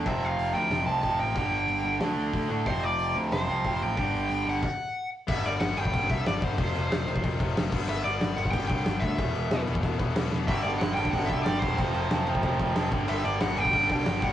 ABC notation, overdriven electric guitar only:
X:1
M:4/4
L:1/8
Q:1/4=184
K:Flyd
V:1 name="Overdriven electric guitar"
e f2 g2 a a g- | g4 z4 | c d2 z c3 g- | g3 ^f4 z |
[K:G] e d f g2 e d c- | c4- c z3 | e d2 f g g2 e- | e3 z4 z |
e d f g f e d c- | c4- c z3 | e d f g2 g2 f |]